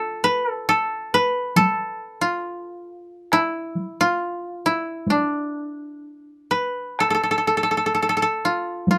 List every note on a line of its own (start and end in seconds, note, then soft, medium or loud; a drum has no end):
0.00 1.17 F4 medium
0.00 0.51 A4 medium
0.24 0.51 B4 medium
0.51 0.69 A4 medium
0.69 1.56 A4 medium
1.14 2.92 B4 medium
1.56 3.47 A4 medium
1.56 taiko high medium
2.21 3.39 F4 medium
3.32 4.07 E4 medium
3.32 taiko rim soft
3.75 taiko high soft
4.01 4.72 F4 medium
4.66 6.92 E4 medium
5.07 7.53 D4 medium
5.07 taiko high soft
6.51 8.28 B4 medium
6.99 7.10 A4 medium
6.99 taiko rim soft
7.10 7.14 A4 soft
7.15 7.23 A4 soft
7.23 7.31 A4 soft
7.31 7.37 A4 medium
7.38 7.47 A4 soft
7.47 7.57 A4 soft
7.57 7.63 A4 soft
7.63 7.71 A4 soft
7.71 7.77 A4 soft
7.77 7.86 A4 soft
7.86 7.94 A4 soft
7.95 8.02 A4 soft
8.02 8.09 A4 soft
8.09 8.16 A4 medium
8.17 8.22 A4 soft
8.22 8.98 A4 medium
8.45 8.90 F4 medium
8.87 8.98 F4 medium
8.87 taiko high medium